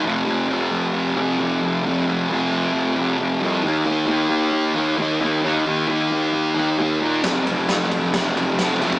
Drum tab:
RD |----------------|----------------|----------------|----------------|
SD |----------------|----------------|----------------|----------------|
BD |----------------|----------------|----------------|----------------|

RD |x-x-x-x-x-x-x-x-|
SD |o---o---o---o---|
BD |o-----o-o------o|